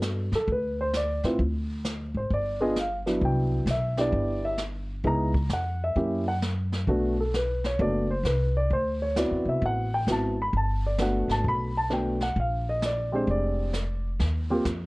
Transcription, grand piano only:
Already playing: B3 D4 F#4 A4
0.35 A4
0.52 B4
0.81 C5
0.97 D5
1.24 C4 E4 F4 B4
2.17 C5
2.34 D5
2.60 B3 D4 F4 G#4 D#5
2.79 F5
3.06 F#3 B3 D4 E4
3.25 G5
3.71 E5
3.98 B3 D4 E4 G4 D5
4.45 E5
5.04 B3 D#4 E4 G#4 A#5
5.53 F#5
5.84 E5
5.96 A#3 C#4 E4 G4
6.28 F#5
6.88 A3 B3 D4 F#4
7.20 A4
7.36 B4
7.66 C#5
7.79 A3 B3 D4 F#4 D5
8.11 C5
8.26 B4
8.57 D5
8.73 C5
9.02 C#5
9.17 B3 C4 E4 F#4 D5
9.49 E5
9.66 F#5
9.94 G5
10.08 B3 C4 E4 F#4
10.12 A5
10.42 B5
10.57 A5
10.87 D5
10.99 A3 B3 D4 F#4 F#5
11.32 A5
11.48 B5
11.77 A5
11.90 A3 B3 D4 F#4 G5
12.23 F#5
12.40 F5
12.69 D#5
12.86 D5
13.12 G#3 C4 D4 G4 C5
13.31 D5
14.50 A#3 C4 F4 G4

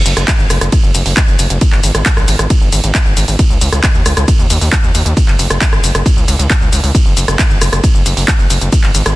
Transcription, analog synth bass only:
0.06 F#1
0.17 F#1
0.39 G#1
0.50 F#1
0.61 F#1
0.83 F#1
0.95 F#1
1.06 F#1
1.28 F#1
1.39 F#1
1.50 F#1
1.73 G#1
1.84 G#1
1.95 G#1
2.17 A#1
2.28 G#1
2.39 G#1
2.61 G#1
2.73 G#1
2.84 G#1
3.06 G#1
3.17 G#1
3.28 G#1
3.50 C#2
3.61 C#2
3.72 C#2
3.95 D#2
4.06 C#2
4.17 C#2
4.39 D#2
4.50 D#2
4.61 D#2
4.84 D#2
4.95 D#2
5.06 D#2
5.28 F#1
5.39 F#1
5.50 F#1
5.72 G#1
5.84 F#1
5.95 F#1
6.17 C#2
6.28 C#2
6.39 C#2
6.61 C#2
6.72 C#2
6.84 C#2
7.06 F#1
7.17 F#1
7.28 F#1
7.50 G#1
7.61 F#1
7.72 F#1
7.95 F#1
8.06 F#1
8.17 F#1
8.39 F#1
8.50 F#1
8.61 F#1
8.84 G#1
8.95 G#1
9.06 G#1

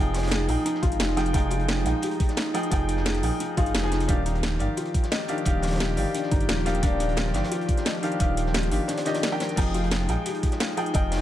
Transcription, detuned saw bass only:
Already playing: F1
0.49 A#1
0.83 G#1
1.00 F1
1.34 F1
1.86 A#1
2.72 F1
3.23 A#1
3.57 G#1
3.75 F1
4.09 D#1
4.60 G1
5.46 D#1
5.97 G1
6.32 G1
6.49 D#1
6.83 D#1
7.34 G1
8.20 D#1
8.72 G1
9.57 F1
10.09 A#1
10.95 F1

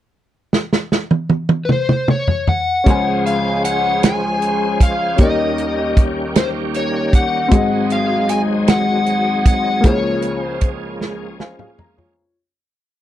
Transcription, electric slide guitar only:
1.65 B4
1.72 C5
2.11 C#5
2.49 F#5
3.26 F5
3.65 F#5
4.04 G#5
4.83 F5
5.21 D#5
6.38 C5
6.77 C#5
7.15 F#5
7.92 F5
8.30 G#5
8.69 F#5
9.47 F#5
9.85 C#5
10.41 C5

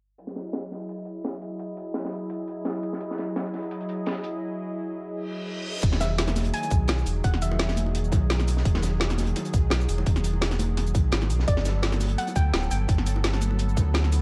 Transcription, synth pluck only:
6.01 E5
6.54 G#5
7.24 F#5
7.42 E5
11.48 D5
12.18 F#5
12.36 G5
12.71 G5

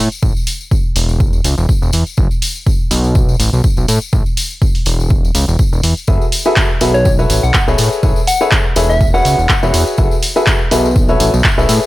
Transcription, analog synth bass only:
0.23 A1
0.96 E1
1.44 C#2
1.58 E1
1.82 E1
1.93 E2
2.18 F#1
2.91 B1
3.40 A1
3.53 B1
3.77 B1
3.88 A2
4.13 A1
4.86 E1
5.35 C#2
5.48 E1
5.72 E1
5.84 E2
6.08 F#1
6.81 B1
7.30 A1
7.43 B1
7.68 B1
7.79 A2
8.03 A1
8.76 E1
9.25 C#2
9.38 E1
9.63 E1
9.74 E2
9.98 F#1
10.71 B1
11.20 A1
11.33 B1
11.58 B1
11.69 A2

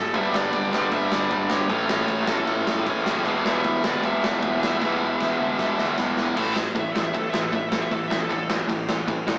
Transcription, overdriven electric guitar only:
0.13 G2 D3 G3 B3 D4
0.72 G2 D3 G3 B3 D4
1.29 G2 D3 G3 B3 D4
1.69 A2 E3 A3 C#4 E4
2.28 A2 E3 A3 C#4 E4
2.87 A2 E3 A3 C#4 E4
3.25 E3 G#3 B3 E4
3.83 E3 G#3 B3 E4
4.43 E3 G#3 B3 E4
4.81 E3 G#3 B3 E4
5.39 E3 G#3 B3 E4
5.99 E3 G#3 B3 E4
6.38 A2 E3 A3
6.56 A2 E3
6.75 A2 E3
6.95 A2 E3
7.15 A2 E3
7.34 A2 E3
7.54 A2 E3
7.73 A2 E3
7.92 A2 E3
8.11 A2 E3
8.31 A2 E3
8.49 A2 E3
8.67 A2 E3
8.88 A2 E3
9.08 A2 E3
9.27 A2 E3

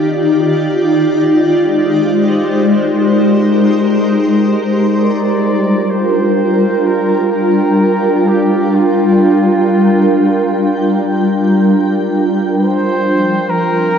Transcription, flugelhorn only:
4.94 D5
5.90 C5
6.87 A#4
7.32 A#4
8.28 G4
8.75 F4
12.54 C5
13.50 A#4

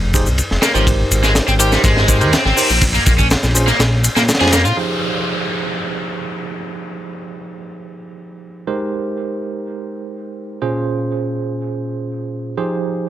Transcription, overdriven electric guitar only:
0.63 A#3
0.75 F3
1.24 G#3
1.48 C4
1.60 G4
1.72 G3
1.84 G#3
2.33 C4
2.45 C4
2.94 A#3
3.06 A#3
3.18 C#4
3.67 A#3
4.16 A#3
4.41 G#4
4.53 A#3
4.65 F4

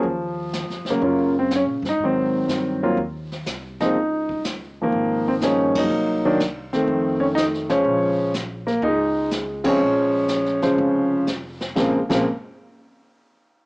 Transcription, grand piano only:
Already playing: F3
0.90 C#3 F#3 A#3
1.02 F#3 A#3 C#4 F4
1.39 C4
1.56 C#4
1.89 D#4
2.04 D#3 F#3 C4
2.83 F#3 A#3 C4 F4
3.81 F3 G#3 A#3 C4 D#4
4.81 D#3 F3 A#3
5.28 C4
5.42 F3 A#3 C#4 D#4 G#4
5.78 F#3 A#3 D#4
6.25 D#3 F#3 A#3 D4
6.73 D#3 A3 C4
7.20 C#4
7.35 D#4
7.69 C#3 F3 G#3 C#4 C5
8.67 A#3
8.83 G#3 D#4
9.64 C#3 F3 G#3 C4 C#4
9.69 F3
10.62 C#3 F3 G#3 C5
11.75 C#3 F3 G#3 A#3 C4
12.09 C#3 F3 G#3 A#3 C4

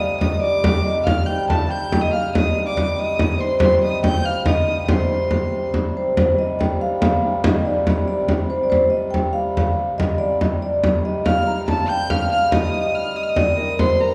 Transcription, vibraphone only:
Already playing: D5
0.19 D#5
0.39 D5
0.84 D#5
1.04 F5
1.26 G5
1.48 A5
1.69 G5
2.01 D#5
2.13 F5
2.33 D#5
2.66 D5
2.77 D5
2.98 D#5
3.38 C5
3.59 C5
3.83 D#5
4.03 G5
4.25 F5
4.46 D#5
4.89 C5
5.97 C5
6.19 C5
6.39 D#5
6.59 G5
6.81 F5
7.45 D#5
7.65 D5
7.87 D#5
8.08 D5
8.50 C5
8.63 D5
8.70 C5
8.90 D#5
9.11 G5
9.33 F5
9.98 D#5
10.18 D5
10.41 D#5
10.62 D5
11.05 D#5
11.26 F5
11.47 A#5
11.69 A5
11.90 G5
12.10 F5
12.33 F5
12.52 D#5
13.16 D#5
13.37 D5
13.57 A#4
13.79 C5
14.00 A#4

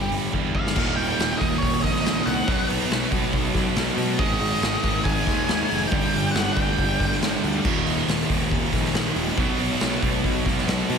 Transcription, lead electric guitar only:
0.56 F5
0.96 G5
1.38 D#5
1.58 C#5
1.83 D#5
2.26 F#5
4.19 D#5
5.04 G#5
5.87 G5
6.31 F#5
6.53 G5

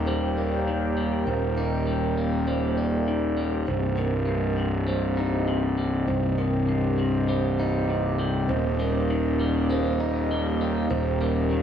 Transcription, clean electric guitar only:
Already playing: D#2 A#3 D#4
0.08 G3
0.38 A#3
0.67 D#3
0.97 G3
1.27 D#2
1.57 D#4
1.87 G3
2.18 A#3
2.48 G3
2.78 A#3
3.08 D#3
3.37 G3
3.67 C2
3.97 C3
4.27 G2
4.58 C3
4.88 G3
5.17 D#4
5.48 C3
5.78 G3
6.08 C2
6.38 C3
6.69 G2
6.98 C3
7.29 G3
7.59 D#4
7.90 C3
8.19 G3
8.49 D#2
8.80 G3
9.10 D#3
9.40 G3
9.70 A#3
10.00 D#4
10.31 G3
10.61 A#3
10.91 D#2
11.22 G3
11.51 D#3

